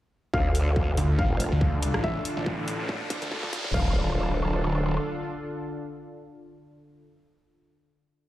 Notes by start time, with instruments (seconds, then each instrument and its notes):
0.34 wobble bass D2, analog synth pad D3 D4 F4 A4, grand piano F5, kick, riser
0.55 closed hi-hat
0.76 kick
0.97 detuned saw bass D2, closed hi-hat
1.19 detuned saw bass A1, grand piano F5, kick
1.30 wobble bass F1
1.40 closed hi-hat
1.52 detuned saw bass D2
1.61 kick
1.83 closed hi-hat
1.94 detuned saw bass A1, cross-stick
2.04 grand piano E5, kick
2.25 closed hi-hat
2.37 detuned saw bass A1
2.46 kick
2.68 closed hi-hat
2.79 detuned saw bass A1
2.89 kick
3.10 kick, closed hi-hat
3.22 detuned saw bass D2, closed hi-hat
3.31 kick
3.43 kick
3.53 kick, closed hi-hat
3.64 detuned saw bass A1, kick
3.74 wobble bass D1, analog synth pad D3 D4 F4 A4, grand piano F5, kick, crash, impact